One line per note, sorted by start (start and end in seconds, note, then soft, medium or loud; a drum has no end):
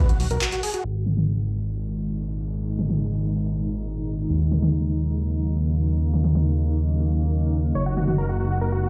0.09 0.17 F#4 medium
0.09 closed hi-hat medium
0.20 0.27 B1 medium
0.20 0.28 F#4 medium
0.20 open hi-hat loud
0.31 0.38 B1 medium
0.31 0.38 A#4 medium
0.31 closed hi-hat medium
0.41 0.49 F#4 medium
0.41 clap loud
0.41 closed hi-hat medium
0.52 0.60 F#4 medium
0.52 clap soft
0.52 closed hi-hat medium
0.63 0.71 G#4 medium
0.63 open hi-hat loud
0.74 0.81 F#4 medium
0.74 closed hi-hat medium
0.84 4.28 G#1 medium
0.84 crash medium
0.84 downlifter medium
1.06 mid tom medium
1.17 mid tom medium
2.79 mid tom medium
2.90 mid tom medium
4.30 7.73 D#2 medium
4.52 mid tom medium
4.62 mid tom medium
6.13 mid tom medium
6.24 mid tom medium
6.35 mid tom medium
7.75 8.89 F#1 medium
7.75 7.83 C#5 medium
7.86 7.94 F#4 medium
7.97 8.04 F#4 medium
7.97 mid tom medium
8.07 8.15 F#4 medium
8.07 mid tom medium
8.18 8.26 A#4 medium
8.29 8.37 F#4 medium
8.40 8.48 F#4 medium
8.51 8.58 F#4 medium
8.61 8.69 A#4 medium
8.72 8.80 F#4 medium
8.83 8.89 F#4 medium